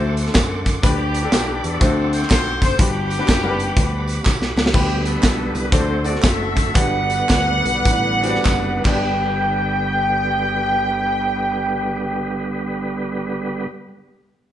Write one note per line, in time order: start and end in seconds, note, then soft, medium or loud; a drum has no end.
0.00 0.28 D2 loud
0.00 0.63 D3 medium
0.00 0.70 A3 loud
0.00 0.63 C#4 medium
0.00 0.63 E4 medium
0.00 0.73 F#4 medium
0.00 0.68 A4 loud
0.00 0.80 A4 medium
0.00 0.70 C5 loud
0.00 0.83 F#5 medium
0.00 0.83 C6 medium
0.00 4.70 D6 medium
0.17 closed hi-hat medium
0.17 tambourine medium
0.26 snare soft
0.35 0.77 F#2 loud
0.35 kick loud
0.35 snare loud
0.35 clap loud
0.35 closed hi-hat medium
0.35 tambourine loud
0.66 kick medium
0.66 snare soft
0.66 closed hi-hat medium
0.66 tambourine medium
0.82 1.25 D2 loud
0.82 1.60 D3 medium
0.82 1.78 B3 medium
0.82 1.16 D4 medium
0.82 1.78 D4 medium
0.82 1.16 G4 medium
0.82 1.81 G4 medium
0.82 1.60 G4 loud
0.82 1.16 B4 loud
0.82 1.80 D5 medium
0.82 1.81 B5 medium
0.82 kick loud
0.82 closed hi-hat loud
0.82 tambourine medium
1.14 closed hi-hat medium
1.14 tambourine medium
1.23 1.38 D4 medium
1.23 1.39 G4 medium
1.23 1.39 A4 medium
1.32 1.59 B1 medium
1.32 snare loud
1.32 clap loud
1.32 closed hi-hat medium
1.32 tambourine loud
1.47 1.79 D4 medium
1.47 1.81 G4 medium
1.47 1.81 A4 medium
1.64 1.79 E2 loud
1.64 2.58 C4 loud
1.64 2.58 F#4 medium
1.64 2.13 A4 loud
1.64 closed hi-hat medium
1.64 tambourine medium
1.80 2.23 D2 loud
1.80 2.58 D3 medium
1.80 2.65 A3 medium
1.80 2.65 C4 medium
1.80 2.65 D4 medium
1.80 2.65 F#4 medium
1.80 2.78 A4 medium
1.80 2.65 C5 medium
1.80 4.71 F#5 medium
1.80 2.78 C6 medium
1.80 kick loud
1.80 closed hi-hat medium
1.80 tambourine medium
2.13 2.29 C5 loud
2.13 closed hi-hat medium
2.13 tambourine medium
2.22 snare soft
2.30 2.57 B1 loud
2.30 2.60 C5 loud
2.30 kick loud
2.30 snare loud
2.30 clap loud
2.30 closed hi-hat loud
2.30 tambourine loud
2.62 2.76 F#1 loud
2.62 2.79 C5 loud
2.62 kick medium
2.62 snare soft
2.62 closed hi-hat medium
2.62 tambourine medium
2.78 3.20 G1 loud
2.78 3.55 G2 medium
2.78 3.11 G3 medium
2.78 3.11 B3 medium
2.78 4.53 B3 medium
2.78 3.11 D4 medium
2.78 4.53 D4 medium
2.78 3.12 F#4 medium
2.78 4.72 G4 medium
2.78 4.53 G4 loud
2.78 3.12 B4 medium
2.78 4.72 B5 medium
2.78 kick loud
2.78 closed hi-hat loud
2.78 tambourine medium
3.10 closed hi-hat medium
3.10 tambourine medium
3.18 3.34 G3 medium
3.18 3.34 B3 medium
3.18 3.34 D4 medium
3.18 3.34 F#4 medium
3.18 3.34 B4 medium
3.28 3.70 F#1 medium
3.28 kick medium
3.28 snare loud
3.28 clap medium
3.28 closed hi-hat medium
3.28 tambourine medium
3.43 4.13 G3 medium
3.43 4.13 B3 medium
3.43 4.13 D4 medium
3.43 3.52 A#4 medium
3.43 4.14 F#5 medium
3.50 4.17 B4 medium
3.59 closed hi-hat medium
3.59 tambourine medium
3.77 4.18 D2 medium
3.77 kick loud
3.77 closed hi-hat medium
3.77 tambourine medium
4.08 closed hi-hat medium
4.08 tambourine medium
4.25 4.52 B1 loud
4.25 kick loud
4.25 snare medium
4.25 clap loud
4.25 tambourine loud
4.42 snare medium
4.56 4.71 C#2 medium
4.56 snare loud
4.56 tambourine medium
4.66 snare loud
4.73 5.16 D2 loud
4.73 8.81 D3 medium
4.73 5.51 D3 medium
4.73 5.71 G3 medium
4.73 5.71 B3 medium
4.73 5.69 B3 medium
4.73 5.48 D4 medium
4.73 5.04 D4 medium
4.73 5.71 G4 medium
4.73 5.03 G4 loud
4.73 5.48 G4 medium
4.73 5.71 B4 medium
4.73 5.49 B4 medium
4.73 kick loud
4.73 crash loud
4.73 tambourine medium
5.05 5.69 D4 medium
5.05 5.55 A4 loud
5.05 closed hi-hat medium
5.05 tambourine medium
5.23 5.50 B1 medium
5.23 kick medium
5.23 snare loud
5.23 clap medium
5.23 closed hi-hat medium
5.23 tambourine loud
5.54 5.70 C2 medium
5.54 5.72 B4 loud
5.54 closed hi-hat medium
5.54 tambourine medium
5.72 6.15 D2 loud
5.72 6.53 D3 medium
5.72 6.75 A3 medium
5.72 5.98 C4 medium
5.72 6.75 C4 medium
5.72 5.99 D4 medium
5.72 6.72 F#4 medium
5.72 6.75 F#4 medium
5.72 5.99 F#4 medium
5.72 6.74 A4 medium
5.72 6.24 A4 medium
5.72 5.99 A4 medium
5.72 6.05 C5 loud
5.72 5.99 D5 medium
5.72 kick loud
5.72 closed hi-hat medium
5.72 tambourine medium
6.04 6.58 C4 medium
6.04 6.58 D4 medium
6.04 6.59 F#4 medium
6.04 6.59 A4 medium
6.04 6.22 D5 loud
6.04 6.59 D5 medium
6.04 closed hi-hat medium
6.04 tambourine medium
6.15 snare soft
6.22 6.68 F#1 loud
6.22 6.73 A4 medium
6.22 6.72 C5 medium
6.22 6.76 E5 loud
6.22 kick loud
6.22 snare loud
6.22 clap loud
6.22 closed hi-hat medium
6.22 tambourine loud
6.56 kick medium
6.56 snare soft
6.56 closed hi-hat medium
6.56 tambourine medium
6.74 7.21 G1 loud
6.74 7.61 G2 medium
6.74 8.83 G3 medium
6.74 7.58 B3 medium
6.74 8.83 B3 medium
6.74 7.58 D4 medium
6.74 7.58 F#4 medium
6.74 7.58 G4 medium
6.74 8.83 B4 medium
6.74 8.81 B4 loud
6.74 8.81 D5 medium
6.74 7.59 D5 medium
6.74 8.83 F#5 medium
6.74 8.85 F#5 loud
6.74 kick loud
6.74 closed hi-hat loud
6.74 tambourine medium
7.10 closed hi-hat medium
7.10 tambourine medium
7.29 7.60 D2 medium
7.29 kick medium
7.29 snare loud
7.29 clap loud
7.29 closed hi-hat medium
7.29 tambourine medium
7.65 7.83 B1 loud
7.65 closed hi-hat medium
7.65 tambourine medium
7.85 8.36 A1 loud
7.85 kick loud
7.85 closed hi-hat medium
7.85 tambourine medium
8.22 8.80 B3 medium
8.22 8.82 D4 medium
8.22 8.85 F#4 medium
8.22 8.85 G4 medium
8.22 8.29 C5 medium
8.22 closed hi-hat medium
8.22 tambourine medium
8.30 8.87 D5 loud
8.35 snare soft
8.45 8.79 F#1 medium
8.45 kick loud
8.45 snare medium
8.45 clap loud
8.45 tambourine loud
8.81 13.65 G1 medium
8.81 13.65 G2 medium
8.81 13.62 B3 medium
8.81 13.64 D4 medium
8.81 kick loud
8.81 clap medium
8.81 crash medium
8.85 13.66 D3 medium
8.85 13.66 G3 medium
8.85 13.66 B3 medium
8.85 13.66 G4 medium
8.85 13.67 G4 medium
8.85 13.66 B4 medium
8.85 13.68 D5 medium
8.85 13.66 G5 loud